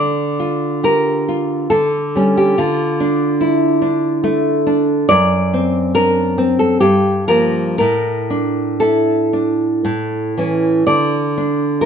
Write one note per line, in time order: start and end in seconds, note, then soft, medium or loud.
0.00 1.67 D3 soft
0.00 0.79 D5 medium
0.40 1.27 F4 soft
0.83 1.70 G4 soft
0.83 1.67 A#4 medium
1.28 1.71 F4 soft
1.70 2.55 D3 soft
1.70 2.33 A4 medium
2.16 2.54 G3 soft
2.16 2.54 C#4 soft
2.38 2.58 G4 medium
2.58 5.05 D3 soft
2.58 4.61 F4 medium
3.00 3.80 D4 soft
3.41 4.65 E4 soft
3.82 4.23 D4 soft
4.24 5.09 A3 soft
4.67 5.09 D4 soft
5.09 6.81 F#2 medium
5.09 5.92 D5 medium
5.54 6.37 C4 soft
5.95 6.83 D4 soft
5.95 6.58 A#4 medium
6.38 6.83 C4 soft
6.59 6.80 A4 soft
6.80 7.76 G2 soft
6.80 7.27 G4 medium
7.28 7.76 F3 soft
7.28 7.76 A#3 soft
7.28 7.77 A#4 medium
7.78 9.83 A2 soft
7.78 8.78 A#4 medium
8.30 9.32 D4 soft
8.80 9.86 E4 soft
8.80 10.32 A4 soft
9.33 9.86 D4 soft
9.85 10.83 A2 soft
10.37 10.83 E3 soft
10.37 10.84 C#4 soft
10.87 11.86 D3 soft
10.87 11.77 D5 medium
11.38 11.86 D4 soft
11.81 11.86 E4 soft
11.81 11.86 A#4 medium